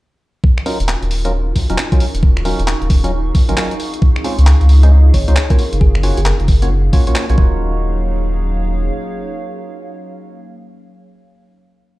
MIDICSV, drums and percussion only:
0, 0, Header, 1, 2, 480
1, 0, Start_track
1, 0, Tempo, 447761
1, 470, Time_signature, 4, 2, 24, 8
1, 12853, End_track
2, 0, Start_track
2, 0, Title_t, "Drums"
2, 468, Note_on_c, 9, 36, 111
2, 575, Note_off_c, 9, 36, 0
2, 618, Note_on_c, 9, 26, 51
2, 707, Note_on_c, 9, 46, 105
2, 726, Note_off_c, 9, 26, 0
2, 815, Note_off_c, 9, 46, 0
2, 860, Note_on_c, 9, 42, 61
2, 949, Note_on_c, 9, 39, 107
2, 967, Note_off_c, 9, 42, 0
2, 1056, Note_off_c, 9, 39, 0
2, 1099, Note_on_c, 9, 42, 33
2, 1188, Note_on_c, 9, 46, 106
2, 1206, Note_off_c, 9, 42, 0
2, 1295, Note_off_c, 9, 46, 0
2, 1340, Note_on_c, 9, 42, 63
2, 1447, Note_off_c, 9, 42, 0
2, 1668, Note_on_c, 9, 36, 57
2, 1669, Note_on_c, 9, 46, 99
2, 1775, Note_off_c, 9, 36, 0
2, 1776, Note_off_c, 9, 46, 0
2, 1819, Note_on_c, 9, 42, 60
2, 1909, Note_on_c, 9, 39, 109
2, 1926, Note_off_c, 9, 42, 0
2, 2016, Note_off_c, 9, 39, 0
2, 2059, Note_on_c, 9, 36, 100
2, 2059, Note_on_c, 9, 42, 51
2, 2148, Note_on_c, 9, 46, 101
2, 2166, Note_off_c, 9, 36, 0
2, 2166, Note_off_c, 9, 42, 0
2, 2255, Note_off_c, 9, 46, 0
2, 2301, Note_on_c, 9, 42, 64
2, 2388, Note_on_c, 9, 36, 115
2, 2408, Note_off_c, 9, 42, 0
2, 2496, Note_off_c, 9, 36, 0
2, 2539, Note_on_c, 9, 26, 53
2, 2628, Note_on_c, 9, 46, 102
2, 2646, Note_off_c, 9, 26, 0
2, 2735, Note_off_c, 9, 46, 0
2, 2781, Note_on_c, 9, 42, 60
2, 2869, Note_on_c, 9, 39, 112
2, 2888, Note_off_c, 9, 42, 0
2, 2976, Note_off_c, 9, 39, 0
2, 3019, Note_on_c, 9, 42, 32
2, 3108, Note_on_c, 9, 36, 100
2, 3109, Note_on_c, 9, 46, 102
2, 3126, Note_off_c, 9, 42, 0
2, 3215, Note_off_c, 9, 36, 0
2, 3216, Note_off_c, 9, 46, 0
2, 3261, Note_on_c, 9, 42, 59
2, 3368, Note_off_c, 9, 42, 0
2, 3589, Note_on_c, 9, 36, 105
2, 3589, Note_on_c, 9, 46, 100
2, 3696, Note_off_c, 9, 36, 0
2, 3696, Note_off_c, 9, 46, 0
2, 3741, Note_on_c, 9, 42, 59
2, 3830, Note_on_c, 9, 39, 115
2, 3830, Note_on_c, 9, 46, 59
2, 3848, Note_off_c, 9, 42, 0
2, 3938, Note_off_c, 9, 39, 0
2, 3938, Note_off_c, 9, 46, 0
2, 3981, Note_on_c, 9, 42, 50
2, 4070, Note_on_c, 9, 46, 101
2, 4088, Note_off_c, 9, 42, 0
2, 4178, Note_off_c, 9, 46, 0
2, 4220, Note_on_c, 9, 42, 60
2, 4309, Note_on_c, 9, 36, 122
2, 4327, Note_off_c, 9, 42, 0
2, 4416, Note_off_c, 9, 36, 0
2, 4461, Note_on_c, 9, 26, 52
2, 4550, Note_on_c, 9, 46, 101
2, 4568, Note_off_c, 9, 26, 0
2, 4657, Note_off_c, 9, 46, 0
2, 4701, Note_on_c, 9, 42, 59
2, 4789, Note_on_c, 9, 39, 119
2, 4808, Note_off_c, 9, 42, 0
2, 4897, Note_off_c, 9, 39, 0
2, 4941, Note_on_c, 9, 42, 32
2, 5028, Note_on_c, 9, 46, 100
2, 5049, Note_off_c, 9, 42, 0
2, 5135, Note_off_c, 9, 46, 0
2, 5181, Note_on_c, 9, 42, 60
2, 5288, Note_off_c, 9, 42, 0
2, 5508, Note_on_c, 9, 36, 64
2, 5510, Note_on_c, 9, 46, 101
2, 5616, Note_off_c, 9, 36, 0
2, 5617, Note_off_c, 9, 46, 0
2, 5660, Note_on_c, 9, 42, 60
2, 5749, Note_on_c, 9, 39, 117
2, 5768, Note_off_c, 9, 42, 0
2, 5856, Note_off_c, 9, 39, 0
2, 5899, Note_on_c, 9, 36, 109
2, 5900, Note_on_c, 9, 42, 49
2, 5989, Note_on_c, 9, 46, 98
2, 6006, Note_off_c, 9, 36, 0
2, 6007, Note_off_c, 9, 42, 0
2, 6096, Note_off_c, 9, 46, 0
2, 6139, Note_on_c, 9, 42, 61
2, 6228, Note_on_c, 9, 36, 121
2, 6246, Note_off_c, 9, 42, 0
2, 6335, Note_off_c, 9, 36, 0
2, 6380, Note_on_c, 9, 26, 51
2, 6468, Note_on_c, 9, 46, 103
2, 6487, Note_off_c, 9, 26, 0
2, 6575, Note_off_c, 9, 46, 0
2, 6619, Note_on_c, 9, 42, 64
2, 6706, Note_on_c, 9, 39, 117
2, 6726, Note_off_c, 9, 42, 0
2, 6814, Note_off_c, 9, 39, 0
2, 6858, Note_on_c, 9, 42, 33
2, 6947, Note_on_c, 9, 46, 103
2, 6949, Note_on_c, 9, 36, 102
2, 6965, Note_off_c, 9, 42, 0
2, 7054, Note_off_c, 9, 46, 0
2, 7056, Note_off_c, 9, 36, 0
2, 7098, Note_on_c, 9, 42, 61
2, 7205, Note_off_c, 9, 42, 0
2, 7429, Note_on_c, 9, 36, 108
2, 7429, Note_on_c, 9, 46, 97
2, 7536, Note_off_c, 9, 36, 0
2, 7536, Note_off_c, 9, 46, 0
2, 7579, Note_on_c, 9, 42, 64
2, 7670, Note_on_c, 9, 39, 116
2, 7670, Note_on_c, 9, 46, 56
2, 7687, Note_off_c, 9, 42, 0
2, 7777, Note_off_c, 9, 39, 0
2, 7777, Note_off_c, 9, 46, 0
2, 7820, Note_on_c, 9, 42, 50
2, 7909, Note_on_c, 9, 36, 111
2, 7928, Note_off_c, 9, 42, 0
2, 8016, Note_off_c, 9, 36, 0
2, 12853, End_track
0, 0, End_of_file